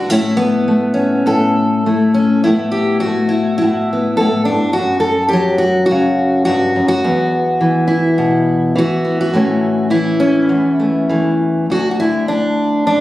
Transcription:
Already playing: D3
0.10 A2 A3 C#4 E4
0.37 B3
0.68 A3
0.94 C#4
1.26 A2 A4
1.86 A3 E4
2.14 C#4
2.44 A2 A3 E4
2.48 B3
2.72 G4
3.00 F#4
3.06 A3
3.29 E4
3.58 A2 E4
3.93 B3
4.17 A2 A4
4.45 G2 D4
4.73 F#4
4.79 F#2
5.00 A4
5.29 G4
5.33 F#3
5.58 F#4
5.86 F#4
5.91 C#3
6.45 G2 F#4
6.76 F#2
6.88 F#4
7.04 E2 B3
7.61 E3
7.88 E4
8.18 B2
8.76 E3 F#4
9.05 B3
9.21 F#4
9.33 A2 E3 A3 C#4
9.90 E3 E4
10.20 C#4
10.49 E2
10.80 A3
11.09 E3 A3
11.70 D2 F#4
11.91 F#4
12.00 D3 E4
12.28 D4
12.87 D4

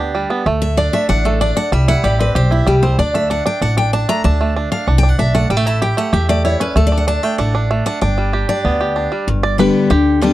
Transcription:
Already playing: D2 B3 G4
0.00 D4
0.15 G3
0.30 B3
0.46 D2 A3
0.62 E5
0.77 D4 D5
0.93 A3 E5
1.09 A1 D4 F#5
1.25 A3 A4
1.41 D4 D5
1.57 D4 F#5
1.72 C2 G3 E5
1.88 E4 F#5
2.04 A1 G4 D5
2.19 C4 B4
2.35 B1 G4 C5
2.51 E4
2.67 C2 G3 G4
2.83 C4 C5
2.98 D2 D4 D5
3.14 A3 E5
3.30 D4 F#5
3.46 D4 G5
3.61 A1 D4 F#5
3.77 D4 G5
3.93 D4 A5
4.09 A3 A#5
4.24 D2 D4 A5
4.41 A3
4.56 D4
4.72 D4 F5
4.87 C2 D4 F#5
4.98 G5
5.03 D4
5.09 F#5
5.19 B1 D4 E5
5.35 A3 F#5
5.50 A1 G3 G5
5.57 A3
5.66 E4 A5
5.82 G4 G5
5.97 A3 F#5
6.13 E2 G4 E5
6.29 A3 D5
6.45 E4 C#5
6.60 C#4 B4
6.75 D2 A3 A4
6.87 D5
6.92 D4
6.98 F#5
7.07 D4 A5
7.23 A3 G5
7.38 A1 D4 F#5
7.55 D4
7.71 A3
7.86 D4 F#5
8.01 G1 D4 G5
8.18 G3
8.33 G4
8.49 D4 D5
8.65 D2 B3
8.80 G4
8.96 D4
9.12 G3
9.28 G1 G2
9.43 D5
9.58 D3 G3 B3 G4 B4
9.90 D2 D3 G4
10.21 D3 G3 B3 D4 G4

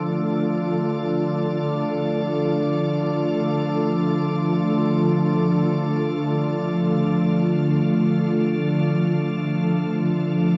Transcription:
Already playing: D3 F3 A3 F4 A4 D5 D6
9.42 D5 D6
10.47 D5

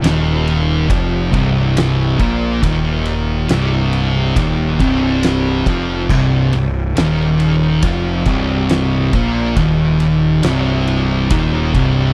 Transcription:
0.03 D#1 D#2 D#3, snare, ride
0.48 ride
0.89 F1 F2 F3, kick, ride
1.33 C1 C2 C3, kick, ride
1.77 snare, ride
2.19 A#1 A#2 A#3, kick, ride
2.63 D#1 D#2 D#3, kick, ride
3.05 ride
3.49 C1 C2 C3, snare, ride
3.93 ride
4.36 D#1 D#2 D#3, kick, ride
4.80 C1 C2 C3, kick, ride
5.23 snare, ride
5.66 F1 F2 F3, kick, ride
6.09 C1 C2 C3, kick, crash
6.53 C1 C2, ride
6.95 D#1 D#2 D#3, snare, ride
7.40 ride
7.82 F1 F2 F3, kick, ride
8.26 C1 C2 C3, kick, ride
8.69 snare, ride
9.13 A#1 A#2 A#3, kick, ride
9.56 D#1 D#2 D#3, kick, ride
10.00 ride
10.43 C1 C2 C3, snare, ride
10.87 ride
11.30 D#1 D#2 D#3, kick, ride
11.74 C1 C2 C3, kick, ride

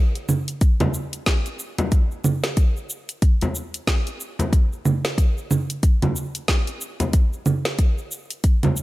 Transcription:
0.15 closed hi-hat, shaker
0.29 low conga, shaker
0.48 closed hi-hat, shaker
0.61 kick, closed hi-hat, shaker
0.80 closed hi-hat, low conga, frame drum, shaker
0.94 shaker
1.13 closed hi-hat, shaker
1.26 kick, snare, closed hi-hat, shaker
1.46 closed hi-hat, shaker
1.59 shaker
1.78 closed hi-hat, frame drum, shaker
1.92 kick, closed hi-hat, shaker
2.11 shaker
2.24 low conga, shaker
2.44 snare, closed hi-hat, shaker
2.57 kick, closed hi-hat, shaker
2.77 shaker
2.90 shaker
3.09 closed hi-hat, shaker
3.22 kick, closed hi-hat, shaker
3.41 closed hi-hat, frame drum, shaker
3.55 shaker
3.74 closed hi-hat, shaker
3.87 kick, snare, closed hi-hat, shaker
4.07 closed hi-hat, shaker
4.21 shaker
4.39 closed hi-hat, frame drum, shaker
4.53 kick, closed hi-hat, shaker
4.73 shaker
4.85 low conga, shaker
5.05 snare, closed hi-hat, shaker
5.18 kick, closed hi-hat, shaker
5.38 shaker
5.51 low conga, shaker
5.70 closed hi-hat, shaker
5.83 kick, closed hi-hat, shaker
6.02 closed hi-hat, low conga, frame drum, shaker
6.16 shaker
6.35 closed hi-hat, shaker
6.48 kick, snare, closed hi-hat, shaker
6.67 closed hi-hat, shaker
6.81 shaker
7.00 closed hi-hat, frame drum, shaker
7.13 kick, closed hi-hat, shaker
7.33 shaker
7.46 low conga, shaker
7.65 snare, closed hi-hat, shaker
7.79 kick, closed hi-hat, shaker
7.98 shaker
8.11 shaker
8.30 closed hi-hat, shaker
8.44 kick, closed hi-hat, shaker
8.63 closed hi-hat, low conga, frame drum, shaker
8.77 shaker

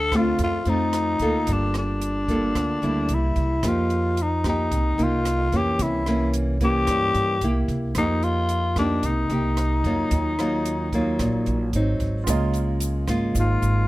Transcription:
Already playing: D2 D3 A4
0.12 A3 C4 F4, kick, cross-stick, closed hi-hat
0.16 F4
0.39 F2, kick, closed hi-hat
0.44 F4
0.65 F2 A3 C4 F4, closed hi-hat
0.70 D#4
0.93 cross-stick, closed hi-hat
1.19 D2 A#3 F4 A4, kick, closed hi-hat
1.47 G1 G3, kick, closed hi-hat
1.52 D4
1.74 cross-stick, closed hi-hat
1.78 D4
2.02 closed hi-hat
2.28 A#3 F4 A4, kick, closed hi-hat
2.55 D2 D3, kick, cross-stick, closed hi-hat
2.82 D2 G3 A#3 E4, closed hi-hat
3.09 C2, closed hi-hat
3.14 E4
3.36 C2, kick, closed hi-hat
3.63 F2 F3 A#3 D#4 G4, kick, cross-stick, closed hi-hat
3.68 F4
3.90 closed hi-hat
4.17 closed hi-hat
4.22 D#4
4.44 A#3 D#4 G4, kick, cross-stick, closed hi-hat
4.49 D#4
4.71 C2 C3, kick, closed hi-hat
4.98 C2 A#3 D#4 G4, closed hi-hat
5.03 F4
5.25 cross-stick, closed hi-hat
5.52 F2 E3 A#3 C#4, kick, closed hi-hat
5.57 G4
5.79 C2 C3 E4, kick, closed hi-hat
6.06 E3 A#3 C#4, cross-stick, closed hi-hat
6.34 closed hi-hat
6.61 E3 A#3 C#4 G4, kick, closed hi-hat
6.87 G2, kick, cross-stick, closed hi-hat
7.14 G2, closed hi-hat
7.41 C2 A#3 E4 G4, closed hi-hat
7.68 C2, kick, closed hi-hat
7.95 F2 F3 A#3 D#4 G4, kick, cross-stick, closed hi-hat
8.23 F4, closed hi-hat
8.49 closed hi-hat
8.76 A#3 D4 D#4 G4, kick, cross-stick, closed hi-hat
9.03 C2 C3 D#4, kick, closed hi-hat
9.30 C2 A#3 D#4 G4, closed hi-hat
9.57 cross-stick, closed hi-hat
9.84 F2 F#3 A#3 F4, kick, closed hi-hat
10.11 D#2 D#3, kick, closed hi-hat
10.39 F#3 A#3 F4, cross-stick, closed hi-hat
10.66 closed hi-hat
10.93 F#3 A#3 F4, kick, closed hi-hat
11.19 A#1 A#2, kick, cross-stick, closed hi-hat
11.46 A#1, closed hi-hat
11.73 G#1 F#3 C4 D#4, closed hi-hat
12.00 G#1, kick, closed hi-hat
12.24 C#2 G#3 F4 G#4, kick, cross-stick, closed hi-hat, shaker
12.28 C#3 A#3 F4 A#4 D#5
12.54 closed hi-hat, shaker
12.80 closed hi-hat, shaker
13.07 G#1 G#3 A#3 F4, kick, cross-stick, closed hi-hat, shaker
13.35 G#1 G#2, kick, closed hi-hat, shaker
13.40 F4
13.62 G#1, closed hi-hat, shaker

